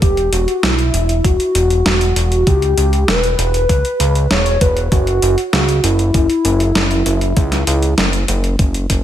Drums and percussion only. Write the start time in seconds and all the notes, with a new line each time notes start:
0.02 kick, closed hi-hat
0.17 closed hi-hat
0.33 closed hi-hat
0.48 closed hi-hat
0.63 snare, closed hi-hat
0.79 closed hi-hat
0.94 closed hi-hat
1.09 closed hi-hat
1.24 kick, closed hi-hat
1.40 closed hi-hat
1.55 closed hi-hat
1.70 closed hi-hat
1.86 snare, closed hi-hat
2.01 closed hi-hat
2.16 closed hi-hat
2.32 closed hi-hat
2.47 kick, closed hi-hat
2.62 closed hi-hat
2.78 closed hi-hat
2.93 closed hi-hat
3.08 snare, closed hi-hat
3.23 closed hi-hat
3.39 closed hi-hat
3.54 closed hi-hat
3.69 kick, closed hi-hat
3.85 closed hi-hat
4.00 closed hi-hat
4.15 closed hi-hat
4.31 snare, closed hi-hat
4.46 closed hi-hat
4.61 kick, closed hi-hat
4.77 closed hi-hat
4.92 kick, closed hi-hat
5.07 closed hi-hat
5.22 closed hi-hat
5.38 closed hi-hat
5.53 snare, closed hi-hat
5.69 closed hi-hat
5.84 closed hi-hat
5.99 closed hi-hat
6.14 kick, closed hi-hat
6.30 closed hi-hat
6.45 closed hi-hat
6.60 closed hi-hat
6.75 snare, closed hi-hat
6.91 closed hi-hat
7.06 closed hi-hat
7.21 closed hi-hat
7.37 kick, closed hi-hat
7.52 snare, closed hi-hat
7.67 closed hi-hat
7.82 closed hi-hat
7.98 snare, closed hi-hat
8.13 closed hi-hat
8.28 closed hi-hat
8.44 closed hi-hat
8.59 kick, closed hi-hat
8.74 closed hi-hat
8.90 kick, closed hi-hat